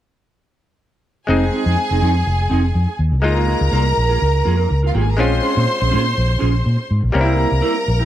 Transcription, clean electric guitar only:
1.28 1.42 C4 medium
1.28 1.43 D#4 medium
1.28 1.43 G#4 medium
1.52 1.64 C4 medium
1.52 1.64 D#4 medium
1.52 1.64 G#4 medium
1.65 1.76 C4 soft
1.65 1.76 D#4 soft
1.65 1.75 G#4 soft
1.77 muted clean electric guitar stroke soft
1.90 2.00 C4 soft
1.90 2.00 D#4 medium
1.90 2.00 G#4 medium
2.01 2.15 C4 medium
2.01 2.14 D#4 medium
2.01 2.13 G#4 medium
2.15 muted clean electric guitar stroke soft
2.26 muted clean electric guitar stroke soft
2.38 muted clean electric guitar stroke soft
2.50 2.64 C4 medium
2.50 2.63 D#4 medium
2.50 2.62 G#4 medium
2.63 muted clean electric guitar stroke soft
2.74 muted clean electric guitar stroke soft
2.86 muted clean electric guitar stroke soft
3.12 muted clean electric guitar stroke soft
3.23 muted clean electric guitar stroke soft
3.36 3.46 A#3 medium
3.36 3.47 F4 medium
3.36 3.48 G#4 medium
3.48 3.59 A#3 medium
3.48 3.59 F4 medium
3.48 3.59 G#4 medium
3.61 muted clean electric guitar stroke soft
3.71 3.86 A#3 medium
3.71 3.85 F4 medium
3.71 3.85 A#4 loud
3.85 muted clean electric guitar stroke soft
3.96 muted clean electric guitar stroke soft
4.09 4.20 A#3 medium
4.09 4.19 F4 medium
4.09 4.19 G#4 medium
4.21 muted clean electric guitar stroke soft
4.34 muted clean electric guitar stroke soft
4.45 4.57 A#3 medium
4.45 4.57 F4 medium
4.45 4.57 G#4 medium
4.57 4.68 A#3 soft
4.57 4.68 F4 medium
4.57 4.67 A#4 medium
4.70 muted clean electric guitar stroke soft
4.83 4.93 A#3 soft
4.83 4.93 F4 medium
4.83 4.92 A#4 medium
4.95 5.08 A#3 medium
4.95 5.06 F4 medium
4.95 5.06 G#4 medium
5.07 muted clean electric guitar stroke soft
5.18 5.32 C#4 medium
5.18 5.32 F4 medium
5.18 5.33 G#4 medium
5.42 5.53 C#4 medium
5.42 5.54 F4 medium
5.42 5.54 G#4 medium
5.56 5.66 C#4 soft
5.56 5.65 F4 medium
5.56 5.65 G#4 medium
5.67 muted clean electric guitar stroke soft
5.80 5.90 C#4 soft
5.80 5.90 F4 medium
5.80 5.89 G#4 medium
5.91 6.05 C#4 medium
5.91 6.04 F4 medium
5.91 6.03 G#4 medium
6.04 muted clean electric guitar stroke soft
6.14 muted clean electric guitar stroke soft
6.28 muted clean electric guitar stroke soft
6.39 6.53 C#4 medium
6.39 6.52 F4 medium
6.39 6.51 G#4 medium
6.52 muted clean electric guitar stroke soft
6.64 muted clean electric guitar stroke soft
6.77 muted clean electric guitar stroke medium
7.01 muted clean electric guitar stroke soft
7.12 muted clean electric guitar stroke soft
7.24 7.34 A#3 medium
7.24 7.35 E4 medium
7.24 7.36 G4 medium
7.36 7.47 A#3 medium
7.36 7.48 E4 medium
7.36 7.48 G4 medium
7.61 7.75 A#3 medium
7.61 7.75 E4 loud
7.61 7.74 A#4 loud
7.75 muted clean electric guitar stroke soft
7.87 muted clean electric guitar stroke soft
7.99 8.05 A#3 soft
7.99 8.05 E4 medium
7.99 8.05 G4 medium

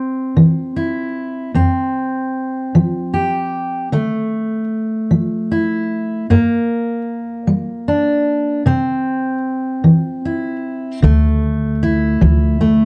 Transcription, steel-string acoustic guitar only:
0.00 1.51 C4 soft
0.37 1.08 E3 soft
0.76 1.51 E4 soft
1.54 2.26 F2 medium
1.54 3.88 C4 soft
2.75 3.46 F3 soft
3.14 3.88 G4 soft
3.92 4.64 D3 medium
3.92 6.25 A3 soft
5.11 5.82 F3 medium
5.52 6.26 E4 soft
6.30 7.01 G2 medium
6.30 8.62 A#3 soft
7.47 8.19 G3 medium
7.88 8.62 D4 soft
8.66 9.37 C3 medium
8.66 10.99 C4 soft
9.84 10.56 E3 soft
10.25 10.99 E4 soft
11.02 11.74 D3 medium
11.02 12.59 A3 soft
11.83 12.85 E4 medium
12.21 12.85 F3 medium
12.61 12.85 A3 soft

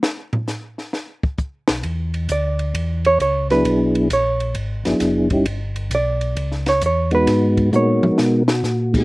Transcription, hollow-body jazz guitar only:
2.32 3.02 D5 medium
3.06 3.20 C#5 loud
3.22 3.50 C#5 medium
3.51 4.07 B4 medium
4.13 4.54 C#5 medium
5.95 6.65 D5 medium
6.69 6.83 C#5 medium
6.86 7.14 C#5 medium
7.15 7.70 B4 medium
7.76 8.17 C#5 medium

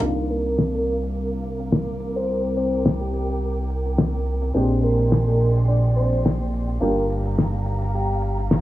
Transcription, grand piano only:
0.01 4.51 A#3 medium
0.01 4.52 D4 medium
0.01 4.52 D#4 medium
0.01 4.52 F4 medium
4.54 6.78 G#3 medium
4.54 6.78 C4 medium
4.54 6.78 D4 medium
4.54 6.79 G4 medium
6.80 8.61 A#3 medium
6.80 8.61 D4 medium
6.80 8.61 F4 medium
6.80 8.61 G4 medium

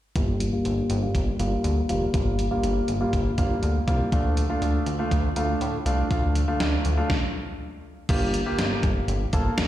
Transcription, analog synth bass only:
0.16 0.50 G1 loud
0.65 0.83 G1 loud
0.90 1.07 G1 loud
1.15 1.32 G1 loud
1.40 1.57 G1 loud
1.64 1.82 D2 medium
1.89 2.06 F1 medium
2.14 2.49 G1 loud
2.64 2.81 G1 loud
2.88 3.06 G1 medium
3.13 3.30 G1 loud
3.38 3.55 G1 medium
3.63 3.80 D2 medium
3.88 4.05 C2 medium
4.12 4.47 D2 loud
4.62 4.79 D2 loud
4.87 5.04 D2 medium
5.11 5.29 D2 loud
5.36 5.54 D2 loud
5.61 5.78 A2 medium
5.86 6.03 C2 medium
6.11 6.45 D2 loud
6.60 6.78 D2 loud
6.85 7.02 D2 loud
8.09 8.44 G1 loud
8.59 8.76 G1 loud
8.83 9.01 G1 loud
9.08 9.25 G1 loud
9.33 9.50 G1 loud
9.58 9.68 D2 medium

